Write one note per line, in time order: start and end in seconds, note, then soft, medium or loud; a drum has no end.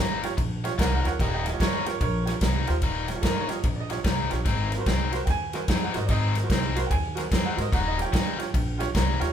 0.00 0.28 G1 medium
0.00 0.23 D#3 medium
0.00 0.23 G3 medium
0.00 0.22 A#3 medium
0.00 0.22 D#4 medium
0.00 0.23 G5 medium
0.23 0.30 F4 medium
0.23 0.31 G4 medium
0.23 0.31 C#5 medium
0.23 muted overdriven electric guitar stroke soft
0.23 snare soft
0.23 ride medium
0.37 0.69 A#1 medium
0.37 muted overdriven electric guitar stroke soft
0.37 kick medium
0.37 ride medium
0.64 0.71 F4 medium
0.64 0.71 G4 medium
0.64 0.72 C#5 medium
0.64 muted overdriven electric guitar stroke soft
0.64 snare soft
0.64 ride medium
0.76 0.98 C2 medium
0.76 1.04 D#3 medium
0.76 1.05 G3 medium
0.76 1.05 A#3 medium
0.76 1.05 D#4 medium
0.76 0.91 A#4 medium
0.76 0.79 F5 medium
0.76 kick medium
0.76 ride medium
0.80 0.93 F#5 medium
0.80 snare loud
0.93 1.05 A#4 medium
0.93 1.06 F#5 medium
1.04 1.16 D#2 medium
1.04 1.12 F4 medium
1.04 1.12 G4 medium
1.04 1.19 A#4 medium
1.04 1.13 C#5 medium
1.04 1.20 F#5 medium
1.04 muted overdriven electric guitar stroke soft
1.04 snare soft
1.04 ride medium
1.20 1.50 D#1 loud
1.20 1.46 D#3 medium
1.20 1.46 G3 medium
1.20 1.46 A#3 loud
1.20 1.46 D#4 loud
1.20 1.33 G4 medium
1.20 1.32 D#5 medium
1.20 kick medium
1.20 snare soft
1.20 ride medium
1.34 1.44 G4 medium
1.34 1.47 D#5 medium
1.45 1.49 G4 soft
1.45 1.50 C#5 soft
1.45 1.61 D#5 medium
1.45 muted overdriven electric guitar stroke medium
1.45 snare soft
1.45 ride medium
1.53 1.60 F4 medium
1.53 1.61 G4 medium
1.53 1.60 C#5 medium
1.60 1.91 G1 medium
1.60 1.86 D#3 medium
1.60 1.86 G3 medium
1.60 1.86 A#3 medium
1.60 1.86 D#4 medium
1.60 1.73 A#4 medium
1.60 1.74 C#5 loud
1.60 kick medium
1.60 snare loud
1.60 ride medium
1.75 1.86 A#4 medium
1.75 1.86 C#5 medium
1.85 1.93 F4 medium
1.85 1.94 G4 medium
1.85 1.94 A#4 medium
1.85 2.01 C#5 medium
1.85 muted overdriven electric guitar stroke soft
1.85 snare soft
1.85 ride medium
2.01 2.32 A#1 loud
2.01 2.40 A#4 medium
2.01 2.25 C#5 medium
2.01 muted overdriven electric guitar stroke soft
2.01 kick medium
2.01 ride medium
2.25 2.33 F4 medium
2.25 2.34 G4 medium
2.25 2.34 C#5 medium
2.25 muted overdriven electric guitar stroke medium
2.25 snare soft
2.25 ride medium
2.41 2.61 C2 medium
2.41 2.68 D#3 medium
2.41 2.68 G3 medium
2.41 2.67 A#3 medium
2.41 2.68 D#4 medium
2.41 kick medium
2.41 snare loud
2.41 ride medium
2.67 2.80 D#2 medium
2.67 2.75 F4 medium
2.67 2.75 G4 medium
2.67 2.76 C5 loud
2.67 muted overdriven electric guitar stroke soft
2.67 snare soft
2.67 ride medium
2.82 3.13 D#1 medium
2.82 3.09 D#3 medium
2.82 3.08 G3 medium
2.82 3.08 A#3 medium
2.82 3.07 D#4 medium
2.82 kick medium
2.82 ride medium
3.08 3.12 G4 soft
3.08 3.13 C#5 medium
3.08 muted overdriven electric guitar stroke medium
3.08 snare soft
3.08 ride medium
3.15 3.23 F4 medium
3.15 3.23 G4 medium
3.15 3.24 C#5 medium
3.21 3.54 G1 medium
3.21 3.49 D#3 medium
3.21 3.48 G3 medium
3.21 3.48 A#3 medium
3.21 3.48 D#4 medium
3.21 3.24 A4 medium
3.21 kick medium
3.21 snare loud
3.21 ride medium
3.25 3.38 A#4 medium
3.40 3.49 C#5 medium
3.49 3.57 F4 medium
3.49 3.57 G4 medium
3.49 3.57 C#5 medium
3.49 3.78 D#5 medium
3.49 muted overdriven electric guitar stroke soft
3.49 snare soft
3.49 ride medium
3.64 3.95 A#1 medium
3.64 muted overdriven electric guitar stroke soft
3.64 kick medium
3.64 ride medium
3.76 3.80 D5 medium
3.80 4.98 D#5 medium
3.89 3.97 F4 medium
3.89 3.98 G4 medium
3.89 3.98 C#5 medium
3.89 muted overdriven electric guitar stroke soft
3.89 snare soft
3.89 ride medium
4.04 4.25 C2 medium
4.04 4.31 D#3 medium
4.04 4.31 G3 medium
4.04 4.30 A#3 medium
4.04 4.30 D#4 medium
4.04 kick medium
4.04 snare loud
4.04 ride medium
4.30 4.43 A#1 medium
4.30 4.38 F4 medium
4.30 4.38 G4 medium
4.30 4.39 C#5 medium
4.30 muted overdriven electric guitar stroke medium
4.30 snare soft
4.30 ride medium
4.45 4.77 G#1 loud
4.45 4.72 D#3 medium
4.45 4.72 G#3 medium
4.45 4.72 C4 medium
4.45 4.71 D#4 medium
4.45 kick medium
4.45 snare soft
4.45 ride medium
4.72 4.76 A#4 soft
4.72 4.77 C5 medium
4.72 muted overdriven electric guitar stroke medium
4.72 snare soft
4.72 ride medium
4.78 4.86 F#4 medium
4.78 4.86 A#4 medium
4.78 4.87 C5 medium
4.86 5.17 C2 medium
4.86 5.12 D#3 medium
4.86 5.13 G#3 medium
4.86 5.12 C4 medium
4.86 5.12 D#4 medium
4.86 kick medium
4.86 snare loud
4.86 ride medium
5.12 5.20 F#4 medium
5.12 5.20 A#4 medium
5.12 5.21 C5 loud
5.12 muted overdriven electric guitar stroke soft
5.12 snare soft
5.12 ride medium
5.26 5.58 D#2 medium
5.26 5.28 G5 medium
5.26 muted overdriven electric guitar stroke soft
5.26 kick medium
5.26 snare soft
5.26 ride medium
5.30 5.82 G#5 loud
5.53 5.61 F#4 medium
5.53 5.61 A#4 medium
5.53 5.62 C5 medium
5.53 muted overdriven electric guitar stroke soft
5.53 snare soft
5.53 ride medium
5.68 5.88 F2 medium
5.68 5.95 D#3 medium
5.68 5.95 G#3 medium
5.68 5.94 C4 medium
5.68 5.94 D#4 medium
5.68 kick medium
5.68 snare loud
5.68 ride medium
5.83 5.96 F#5 medium
5.94 6.06 G#2 medium
5.94 6.02 F#4 medium
5.94 6.02 A#4 medium
5.94 6.02 C5 medium
5.94 6.10 D#5 medium
5.94 muted overdriven electric guitar stroke soft
5.94 snare soft
5.94 ride medium
6.06 6.40 G#1 loud
6.06 6.36 D#3 medium
6.06 6.09 D5 medium
6.06 kick medium
6.06 ride medium
6.11 6.36 G#3 medium
6.11 6.35 C4 medium
6.11 6.35 D#4 medium
6.11 6.50 D#5 loud
6.35 6.39 A#4 soft
6.35 6.40 C5 soft
6.35 muted overdriven electric guitar stroke medium
6.35 snare soft
6.35 ride medium
6.43 6.50 F#4 medium
6.43 6.51 A#4 medium
6.43 6.51 C5 medium
6.50 6.81 C2 medium
6.50 6.77 D#3 medium
6.50 6.77 G#3 medium
6.50 6.77 C4 medium
6.50 6.77 D#4 medium
6.50 kick medium
6.50 snare loud
6.50 ride medium
6.76 6.84 F#4 medium
6.76 6.84 A#4 medium
6.76 6.84 C5 loud
6.76 muted overdriven electric guitar stroke medium
6.76 snare soft
6.76 ride medium
6.87 6.90 G5 medium
6.87 kick medium
6.87 ride medium
6.91 7.22 D#2 medium
6.91 7.44 G#5 loud
6.91 muted overdriven electric guitar stroke soft
7.15 7.23 F#4 medium
7.15 7.24 A#4 medium
7.15 7.24 C5 medium
7.15 muted overdriven electric guitar stroke soft
7.15 snare soft
7.15 ride medium
7.32 7.51 F2 medium
7.32 7.58 D#3 medium
7.32 7.57 G#3 medium
7.32 7.57 C4 medium
7.32 7.57 D#4 medium
7.32 kick medium
7.32 snare loud
7.32 ride medium
7.46 7.59 F#5 medium
7.57 7.69 G#2 medium
7.57 7.65 F#4 medium
7.57 7.65 A#4 medium
7.57 7.65 C5 medium
7.57 7.73 D#5 loud
7.57 muted overdriven electric guitar stroke soft
7.57 snare soft
7.57 ride medium
7.72 8.03 D#1 medium
7.72 7.98 D#3 medium
7.72 7.99 G3 medium
7.72 7.98 A#3 loud
7.72 7.98 D#4 medium
7.72 7.87 F#5 loud
7.72 kick medium
7.72 snare soft
7.72 ride medium
7.88 8.00 D#5 loud
7.97 8.02 G4 soft
7.97 8.03 C#5 soft
7.97 muted overdriven electric guitar stroke medium
7.97 snare soft
7.97 ride medium
8.02 8.12 F4 medium
8.02 8.13 G4 medium
8.02 8.13 C#5 medium
8.02 8.80 G5 loud
8.12 8.44 G1 medium
8.12 8.39 D#3 medium
8.12 8.39 G3 medium
8.12 8.38 A#3 medium
8.12 8.38 D#4 medium
8.12 kick medium
8.12 snare loud
8.12 ride medium
8.38 8.46 F4 medium
8.38 8.46 G4 medium
8.38 8.47 C#5 medium
8.38 muted overdriven electric guitar stroke medium
8.38 snare soft
8.38 ride medium
8.54 8.85 A#1 loud
8.54 muted overdriven electric guitar stroke soft
8.54 kick medium
8.54 ride medium
8.78 8.86 F4 medium
8.78 8.87 G4 medium
8.78 8.87 C#5 medium
8.78 muted overdriven electric guitar stroke soft
8.78 ride medium
8.82 snare soft
8.95 9.15 C2 medium
8.95 9.20 D#3 medium
8.95 9.20 G3 medium
8.95 9.20 A#3 medium
8.95 9.20 D#4 medium
8.95 kick medium
8.95 snare loud
8.95 ride medium
9.20 9.32 D#2 medium
9.20 9.28 F4 medium
9.20 9.28 G4 medium
9.20 9.28 C#5 medium
9.20 muted overdriven electric guitar stroke soft
9.20 snare soft
9.20 ride medium